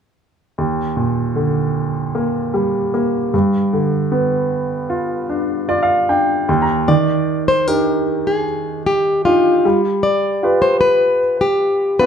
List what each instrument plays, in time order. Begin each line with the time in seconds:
0.58 grand piano D#2
0.97 grand piano A#2
1.35 grand piano D3
2.15 grand piano A#3
2.54 grand piano G3
2.94 grand piano A#3
3.34 grand piano G2
3.73 grand piano D3
4.12 grand piano B3
4.90 grand piano F4
5.29 grand piano D4
5.69 grand piano F4 D5
5.83 grand piano F5
6.09 grand piano D4 G5
6.49 grand piano D#2
6.62 grand piano A#5
6.88 grand piano D#3, nylon-string guitar D5
7.48 nylon-string guitar C5
7.68 grand piano D4 D#4 G4, nylon-string guitar A#4
8.27 nylon-string guitar G#4
8.86 nylon-string guitar G4
9.25 grand piano D4 D#4 G4, nylon-string guitar F4
9.65 grand piano G3
10.03 nylon-string guitar D5
10.43 grand piano F4 G4 B4
10.62 nylon-string guitar C5
10.81 nylon-string guitar B4
11.41 nylon-string guitar G4
11.99 grand piano B3 F4 G4, nylon-string guitar B4